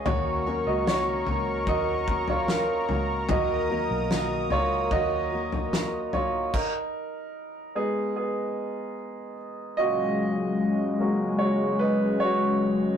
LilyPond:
<<
  \new Staff \with { instrumentName = "Analog synth pad" } { \time 4/4 \key aes \dorian \tempo 4 = 74 << { des'''1 | ees'''1 | r1 | ges1 | } \\ { <bes' bes''>1~ | <bes' bes''>1 | r1 | <des aes>1 | } >> }
  \new Staff \with { instrumentName = "Grand piano" } { \time 4/4 \key aes \dorian <ges' des''>8. <ges' ees''>16 <ges' des''>4 <ges' ees''>8. <f' des''>16 <des' bes'>8. r16 | <ges' ees''>4. <f' des''>8 <ges' ees''>4. <f' des''>8 | <ees' bes'>4. aes'8 <ces' aes'>4. r8 | ees''2 <ges' des''>8 <ees' ces''>8 <ges' des''>8. r16 | }
  \new Staff \with { instrumentName = "Grand piano" } { \time 4/4 \key aes \dorian r8 <ges bes des'>4. r2 | r8 <ges bes ees'>4. r2 | r4. <aes ces' ees'>4. r4 | <bes, des' ges'>4. <bes des' ges'>8 r2 | }
  \new Staff \with { instrumentName = "Steel-string acoustic guitar" } { \time 4/4 \key aes \dorian <ees bes des' ges'>8 <ees bes des' ges'>8 <ees bes des' ges'>8 <bes des' ges'>8 <ees bes des' ges'>8 <bes des' ges'>4 <bes des' ges'>8 | <ees bes ees' ges'>8 <ees bes ees' ges'>8 <ees bes ees' ges'>8 <bes ees' ges'>8 <ees bes ees' ges'>8 <bes ees' ges'>4 <bes ees' ges'>8 | r1 | r1 | }
  \new Staff \with { instrumentName = "Fingered electric bass" } { \clef bass \time 4/4 \key aes \dorian ees,8. des,8. des,8 ees,4. des,8 | ees,8. ces,8. des,8 ees,2 | r1 | r1 | }
  \new DrumStaff \with { instrumentName = "Drums" } \drummode { \time 4/4 tomfh4 sn8 tomfh8 <bd tomfh>8 bd16 tomfh16 sn8 tomfh8 | <bd tomfh>4 sn8 tomfh8 <bd tomfh>8. tomfh16 sn8 tomfh8 | <cymc bd>4 r4 r4 r4 | r4 r4 r4 r4 | }
>>